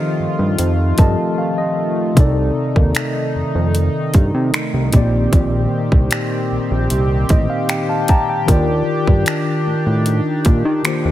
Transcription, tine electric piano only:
Already playing: F3 C4 G4 A4 C5 D#5
0.97 F3 C4 G4 A4 D#5 A5
1.38 F5
1.58 D#5
2.14 C3 C4 D#4
2.19 A4 D5
4.91 A#2 A#3 C4
4.95 G4 D5
7.30 D#5
7.50 F5
7.70 G5
7.89 F5 A5
8.09 G5 A5 A#5
8.29 G5
8.46 D#3 F4 A#4
8.50 G4 D5
10.84 D#3 A#3 F4 G4 C5

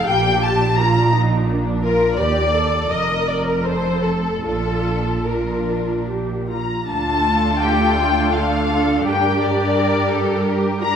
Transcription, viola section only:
0.09 G4
0.80 F4
1.14 D#4
1.50 D4
1.84 F4
2.20 G4
2.54 A4
2.91 A#4
3.65 A4
4.47 F4
5.29 F4
6.10 G4
6.49 F4
6.88 A3 D4
9.06 G3

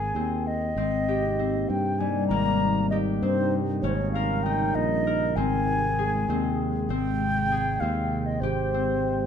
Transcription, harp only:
Already playing: A#3 C4 G#4
0.16 C4
0.77 C4
1.08 G4
1.39 C4
2.00 G3
2.31 A#3
2.92 G4
3.23 C4
3.84 C#4
4.15 A#4
4.46 D#4
5.07 A#4
5.37 C4
5.99 G#4
6.30 C4
6.90 C4
7.52 G#4
7.83 C4
8.43 G4
8.74 C4

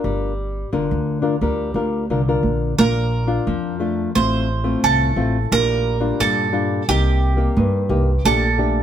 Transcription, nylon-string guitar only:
Already playing: D4 F4 A#4
0.04 G3
0.73 D3 D4 F4 A#4
1.22 D4 F4 A#4
1.42 G3 D4 F4 A#4
1.75 D4 F4 A#4
2.10 D3 D4 F4 A#4
2.28 D4 F4 A#4
2.79 A#2 D4 F4
3.27 D4 F4
3.47 F3
3.80 A3 D4 F4
4.15 A2 A3 C4 F4
4.64 A3 C4 F4
4.84 A2
5.16 A3 C4 F4
5.52 A#2 G3 D4 F4
6.00 G3 D4 F4
6.20 A#2
6.52 G3 D4 F4
6.89 C3 A#3 D#4 G4
7.37 A#3 D#4 G4
7.57 G2
7.89 A#3 D#4 G4
8.25 A#2 A3 D4 G4
8.58 A3 D4 G4

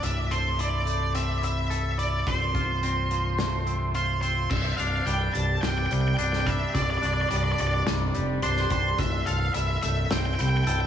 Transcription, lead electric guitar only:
0.04 E5
0.31 C5
0.60 D5
1.15 E5
1.44 E5
1.99 D5
2.27 C5
3.95 C5
4.21 C5
4.50 E5
4.77 F5
5.06 G5
5.34 A5
5.62 G5
5.70 G5
5.78 G5
5.86 G5
5.93 G5
6.01 G5
6.08 G5
6.17 G5
6.24 G5
6.32 G5
6.41 G5
6.46 E5
6.75 D5
6.82 D5
6.90 D5
6.98 D5
7.06 D5
7.13 D5
7.21 D5
7.29 D5
7.36 D5
7.44 D5
7.52 D5
7.61 D5
7.67 D5
7.74 D5
8.43 C5
8.72 C5
8.99 E5
9.26 F5
9.54 E5
9.83 E5
10.11 G5
10.19 G5
10.26 G5
10.35 G5
10.41 G5
10.49 G5
10.57 G5
10.65 G5
10.72 G5
10.80 G5

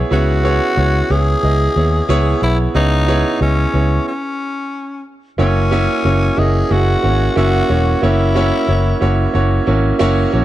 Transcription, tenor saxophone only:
0.13 F#4
1.12 G#4
2.43 E4
2.76 D#4
3.42 C#4
4.08 C#4
5.40 C#4
6.39 G#4
6.72 F#4
7.38 F#4
8.04 E4

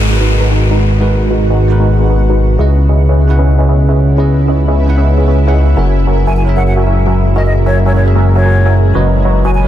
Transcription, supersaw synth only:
Already playing: G#3 D#4 F#4 B4 A#5
0.21 G#3 D#4 F#4 B4 A#5
0.40 G#3 D#4 F#4 B4 A#5
0.51 G#3 D#4 F#4 B4 A#5
0.71 G#3 D#4 F#4 B4 A#5
1.00 G#3 D#4 F#4 B4 A#5
1.30 G#3 D#4 F#4 B4 A#5
1.50 G#3 D#4 F#4 B4 A#5
1.80 G#3 D#4 F#4 B4 A#5
1.99 G#3 D#4 F#4 B4 A#5
2.10 G#3 D#4 F#4 B4 A#5
2.29 G#3 D#4 F#4 B4 A#5
2.59 C#4 G#4 B4 D#5 E5
2.89 C#4 G#4 B4 D#5 E5
3.09 C#4 G#4 B4 D#5 E5
3.39 C#4 G#4 B4 D#5 E5
3.58 C#4 G#4 B4 D#5 E5
3.69 C#4 G#4 B4 D#5 E5
3.89 C#4 G#4 B4 D#5 E5
4.18 C#4 G#4 B4 D#5 E5
4.48 C#4 G#4 B4 D#5 E5
4.68 C#4 G#4 B4 D#5 E5
4.97 C#4 G#4 B4 D#5 E5
5.17 C#4 G#4 B4 D#5 E5
5.28 C#4 G#4 B4 D#5 E5
5.47 C#4 G#4 B4 D#5 E5
5.77 F#3 F#4 A#4 E5 G#5
6.07 F#3 F#4 A#4 E5 G#5
6.27 F#3 F#4 A#4 E5 G#5
6.57 F#3 F#4 A#4 E5 G#5
6.76 F#3 F#4 A#4 E5 G#5
6.87 F#3 F#4 A#4 E5 G#5
7.07 F#3 F#4 A#4 E5 G#5
7.36 F#3 F#4 A#4 E5 G#5
7.66 F#3 F#4 A#4 E5 G#5
7.86 F#3 F#4 A#4 E5 G#5
8.15 F#3 F#4 A#4 E5 G#5
8.35 F#3 F#4 A#4 E5 G#5
8.46 F#3 F#4 A#4 E5 G#5
8.66 F#3 F#4 A#4 E5 G#5
8.95 F#3 F#4 B4 C#5 D#5 A#5
9.25 F#3 F#4 B4 C#5 D#5 A#5
9.45 F#3 F#4 B4 C#5 D#5 A#5

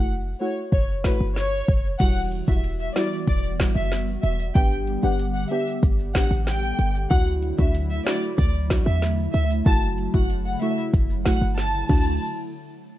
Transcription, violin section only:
0.41 C#5
0.73 C#5
1.05 B4
1.36 C#5
2.00 F#5
2.48 E5
2.80 E5
2.96 D5
3.28 D5
3.76 E5
4.23 E5
4.55 G5
5.03 F#5
5.35 F#5
5.51 E5
6.15 F#5
6.47 G5
7.11 F#5
7.58 E5
7.90 E5
8.06 D5
8.38 D5
8.86 E5
9.34 E5
9.66 A5
10.14 F#5
10.46 F#5
10.62 E5
11.26 F#5
11.58 A5
11.90 A5

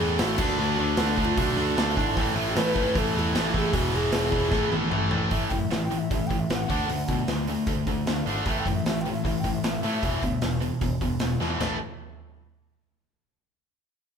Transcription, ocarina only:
Already playing: G#4
0.22 F#4
0.62 F#4
1.04 D4
1.25 F4
1.38 F#4
1.99 E4
2.57 B4
2.99 A4
3.19 E4
3.57 G#4
3.74 F#4
3.96 G#4
5.32 E5
5.48 G5
5.59 E5
5.74 E5
5.84 G5
5.99 E5
6.13 E5
6.27 G5
6.40 E5
6.53 F#5
8.49 E5
8.60 G5
8.75 E5
8.87 E5
9.02 G5
9.13 E5
9.27 E5
9.40 G5
9.54 E5
9.65 E5

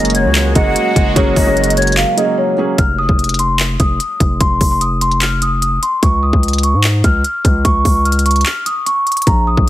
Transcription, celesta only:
Already playing: D#5
0.15 C#5
0.56 D#5
1.16 C#5
1.47 C#5
1.57 D#5
1.77 C#5
1.97 F5
2.17 D#5
2.38 C#5
2.78 F6
2.98 D#6
3.39 C6
3.80 D#6
4.40 C6
4.71 C6
4.81 D#6
5.01 C6
5.22 F6
5.42 D#6
5.62 D#6
5.82 C6
6.03 C#6
6.23 D#6
6.64 C#6
7.04 F6
7.65 C#6
7.95 C#6
8.05 F6
8.26 C#6
8.46 F6
8.66 D#6
8.86 C#6
9.27 A#5
9.47 D#6

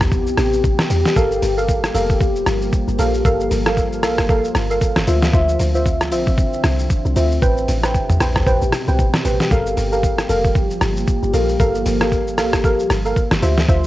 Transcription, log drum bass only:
Already playing: A#1
0.38 A1
0.64 A1
0.90 E2
1.16 G1
1.42 G1
1.95 F1
2.47 G1
2.88 G1
2.99 A#1
3.25 G1
3.51 G1
4.03 A#1
4.55 G1
4.97 G1
5.08 D2
5.34 D2
5.60 D2
6.12 A#1
6.64 C2
7.05 C2
7.16 D2
7.42 A1
7.68 A1
8.21 A#1
8.47 A1
8.62 A1
8.88 C2
8.99 A1
9.25 A1
9.51 G1
9.77 G1
10.29 F1
10.81 G1
11.23 G1
11.34 A#1
11.60 G1
11.86 G1
12.38 A#1
12.90 G1
13.31 G1
13.42 D2
13.69 D2

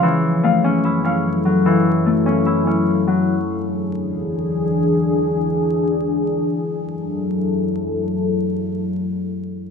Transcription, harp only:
Already playing: C#4 C#5
0.03 E3
0.43 A3
0.64 C#4
0.85 E4
1.04 C#4
1.45 F#3
1.66 E3
2.06 A3
2.26 C#4
2.46 E4
2.67 C#4
3.07 F#3

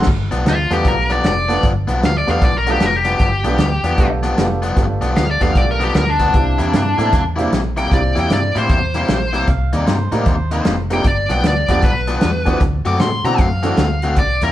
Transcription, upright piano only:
0.70 A3 B3 D4 F4 G4
1.48 A3 B3 D4 F4 A4
2.27 A3 B3 D4 F4 G4
2.67 A3 B3 D4 F4 A4
3.45 A3 B3 D4 F4 G4
3.99 A3 B3 D4 F4 G4
4.39 A3 B3 D4 F4 G4
4.76 A3 B3 D4 F4 G4
5.41 A3 B3 D4 F4 G4
6.34 A#3 C4 D4 E4 G4
6.98 A#3 C4 D4 E4 A4
7.37 A#3 C4 D4 E4 G4
7.92 A#3 C4 D4 E4 G4
10.12 A#3 C4 D4 D#4 G4
10.90 F3 A3 B3 D4 G4
11.69 F3 A3 B3 D4 G4
12.45 E3 A3 C4 D4 F#4
13.24 E3 A3 C4 D4 F#4
13.63 E3 A3 C4 D4 A4

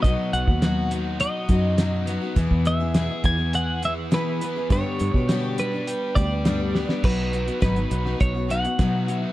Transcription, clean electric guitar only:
0.03 D#5
0.33 F#5
1.21 D#5
2.67 E5
3.26 G#5
3.55 F#5
3.85 E5
4.14 B4
4.72 C#5
5.60 B4
6.15 D5
7.05 B4
7.62 B4
8.21 C#5
8.51 F#5
9.15 E5

